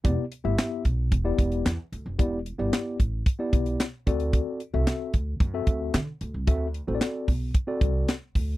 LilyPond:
<<
  \new Staff \with { instrumentName = "Tine electric piano" } { \time 4/4 \key e \minor \tempo 4 = 112 <b e' g' d''>16 r8 <b e' g' e''>8. r8. <b e' g' d''>8. r4 | <b e' g' d''>16 r8 <b e' g' d''>8. r8. <b e' g' d''>8. r8 <c' fis' a' d''>8~ | <c' fis' a' d''>8 r16 <c' fis' a' e''>8. r8. <c' fis' a' e''>8. r4 | <c' fis' a' e''>16 r8 <c' fis' a' c'' d''>8. r8. <c' fis' a' d''>8. r4 | }
  \new Staff \with { instrumentName = "Upright bass" } { \clef bass \time 4/4 \key e \minor e,,16 r8 g,,16 r8 b,,8 e,,8 e,,8 e,16 r16 d,16 fis,,16 | e,,8. g,,16 r8 a,,8 r8 b,,8 r8 d,8~ | d,16 r8 c,16 r8 d,8 fis,8 d,8 d16 r16 d,16 c,16 | d,8. a,,16 r8 b,,8 r8 c,8 r8 d,8 | }
  \new DrumStaff \with { instrumentName = "Drums" } \drummode { \time 4/4 <hh bd>8 hh8 <hc hh sn>8 <hh bd>8 <hh bd>8 <hh bd>16 hh16 <hc hh sn>8 hh8 | <hh bd>8 hh8 <hc hh sn>8 <hh bd>8 <hh bd>8 <hh bd>16 hh16 <hc hh sn>8 <hh bd>16 hh16 | <hh bd>8 hh8 <hc hh sn>8 <hh bd>8 <hh bd>8 <hh bd>8 <hc hh sn>8 hh8 | <hh bd>8 hh8 <hc hh sn>8 <hho bd>8 <hh bd>8 <hh bd>8 <hc hh sn>8 <hho bd>8 | }
>>